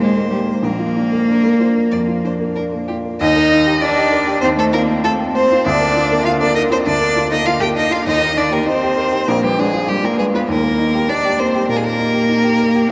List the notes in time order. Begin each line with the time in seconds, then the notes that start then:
Already playing: D#2 G#3 A#3 G4
0.00 D#4 C5
0.15 A#3
0.30 G3 G4
0.46 A#4
0.62 A#1 A#3 A#4
0.79 F4
0.96 D4
1.12 A#3
1.29 D4 A#4
1.44 A#3
1.60 F4 C5
1.76 A#4
1.91 F2 D5
2.08 F4
2.24 D4 C5
2.40 A#3
2.55 D4 A#4
2.73 A#3
2.88 F4 G4
3.05 A#4
3.20 D#2 D#4 D#5
3.36 A#4
3.52 D#4
3.66 G4
3.81 D4 D#4 D5
3.98 G4
4.12 A#4
4.27 G4
4.41 D#2 C4 C5
4.57 A3 A4 C5
4.73 A#3 F4 A#4
4.89 C4
5.04 A3 F4 A4
5.19 C4
5.34 C4 C5
5.51 F4
5.65 D2 D4 D5
5.81 A#4
5.96 F4
6.11 A#3
6.25 F4 F5
6.40 A#3 D4 D5
6.55 D#4 A#4 D#5
6.69 C4 F4 C5
6.86 D2 D4 D5
7.01 A#4
7.16 F4
7.31 A#3 D#4 D#5
7.46 F4 F5
7.60 A#3 G4 G5
7.75 D#4 A#4 D#5
7.91 F4 F5
8.05 D#2 D#4 D#5
8.21 A#4
8.36 D4 D#4 D5
8.51 A#3 G4 A#4
8.66 C4 D#4 C5
8.83 G4
8.97 A#4
9.12 G4
9.28 A#1 A#3 A#4
9.43 G3 G4 B4
9.59 G#3 D4 G#4
9.74 F4
9.88 G3 D4 G4
10.03 A#3 F4 A#4
10.18 G#3 G#4 B4
10.34 B3 F4 B4
10.48 D#2 A#3 A#4
10.64 A#4
10.78 D#4
10.94 G4
11.09 D4 D#4 D5
11.25 G4
11.39 C4 A#4 C5
11.55 G4
11.68 A#2 A#3 A#4
11.76 G#4
11.84 A#4
11.99 D#4
12.14 G4
12.29 D#4
12.44 G4
12.60 A#4
12.75 G4